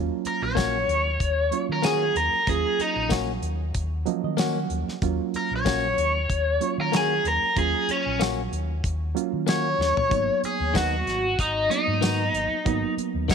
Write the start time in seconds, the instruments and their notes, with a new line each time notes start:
Already playing: reed electric piano F#3 A#3 C#4 F4
0.25 overdriven electric guitar A#4, muted fingered electric bass stroke, closed hi-hat
0.42 fingered electric bass A#1, overdriven electric guitar C#5
0.55 clean electric guitar A#3 C#4 F#4, kick, snare, closed hi-hat, tambourine
0.88 fingered electric bass D#2, closed hi-hat
1.20 fingered electric bass D#2, kick, closed hi-hat
1.51 reed electric piano F#3 A#3 C#4 F4, closed hi-hat
1.69 fingered electric bass D#3, overdriven electric guitar A#4
1.82 clean electric guitar A#3 C#4 F#4, overdriven electric guitar G#4, snare, closed hi-hat, tambourine
2.15 fingered electric bass D#2, overdriven electric guitar A#4, closed hi-hat
2.32 muted fingered electric bass stroke
2.47 fingered electric bass D#2, reed electric piano F#3 A#3 C#4 F4, overdriven electric guitar G#4, kick, closed hi-hat
2.79 overdriven electric guitar D#4, muted fingered electric bass stroke, closed hi-hat
2.96 fingered electric bass A#1
3.10 clean electric guitar A#3 C#4 F#4, kick, snare, closed hi-hat, tambourine
3.42 fingered electric bass D#2, closed hi-hat
3.74 fingered electric bass D#2, kick, closed hi-hat
4.06 reed electric piano F3 F#3 A#3 C#4 D#5, closed hi-hat
4.24 fingered electric bass D#3, reed electric piano D#5
4.37 clean electric guitar A#3 C#4 F#4, reed electric piano F#5, snare, closed hi-hat, tambourine
4.70 fingered electric bass D#2, closed hi-hat
4.87 muted fingered electric bass stroke, snare
5.02 fingered electric bass D#2, reed electric piano F#3 A#3 C#4 F4, kick, closed hi-hat
5.34 overdriven electric guitar A#4, muted fingered electric bass stroke, closed hi-hat
5.51 fingered electric bass A#1
5.56 overdriven electric guitar C#5
5.65 clean electric guitar A#3 C#4 F#4, kick, snare, closed hi-hat, tambourine
5.97 fingered electric bass D#2, closed hi-hat
6.29 fingered electric bass D#2, kick, closed hi-hat
6.60 reed electric piano F#3 A#3 C#4 F4, closed hi-hat
6.78 fingered electric bass D#3, overdriven electric guitar A#4
6.92 clean electric guitar A#3 C#4 F#4, snare, closed hi-hat, tambourine
6.96 overdriven electric guitar G#4
7.25 fingered electric bass D#2, overdriven electric guitar A#4, closed hi-hat
7.42 muted fingered electric bass stroke
7.56 fingered electric bass D#2, reed electric piano F#3 A#3 C#4 F4, overdriven electric guitar G#4, kick, closed hi-hat
7.88 overdriven electric guitar C#4, muted fingered electric bass stroke, closed hi-hat
8.06 fingered electric bass A#1
8.20 clean electric guitar A#3 C#4 F#4, snare, closed hi-hat, tambourine
8.52 fingered electric bass D#2, closed hi-hat
8.84 fingered electric bass D#2, kick, closed hi-hat
9.15 reed electric piano F#3 A#3 C#4 F4, closed hi-hat
9.33 fingered electric bass D#3
9.47 clean electric guitar A#3 C#4 F#4, overdriven electric guitar C#5, snare, closed hi-hat, tambourine
9.78 fingered electric bass D#2, snare
9.96 muted fingered electric bass stroke, floor tom
10.10 fingered electric bass G#1, reed electric piano F#3 A#3 B3 D#4, kick, closed hi-hat
10.43 overdriven electric guitar G#4, muted fingered electric bass stroke, closed hi-hat
10.60 fingered electric bass D#2
10.74 clean electric guitar D#3 B3 D#4 F#4, overdriven electric guitar F#4, kick, snare, closed hi-hat, tambourine
11.06 fingered electric bass G#1, snare, closed hi-hat
11.39 fingered electric bass G#1, overdriven electric guitar D#4, kick, closed hi-hat
11.70 reed electric piano F#3 A#3 B3 D#4, overdriven electric guitar D#4, closed hi-hat
11.87 fingered electric bass G#2
12.01 clean electric guitar D#3 B3 D#4 F#4, snare, closed hi-hat, tambourine
12.33 fingered electric bass G#1, closed hi-hat
12.51 muted fingered electric bass stroke
12.65 fingered electric bass G#1, reed electric piano F#3 A#3 B3 D#4, kick, closed hi-hat
12.97 muted fingered electric bass stroke, closed hi-hat
13.14 fingered electric bass D#2
13.28 clean electric guitar D#3 B3 D#4 F#4, overdriven electric guitar C#5, kick, snare, closed hi-hat, tambourine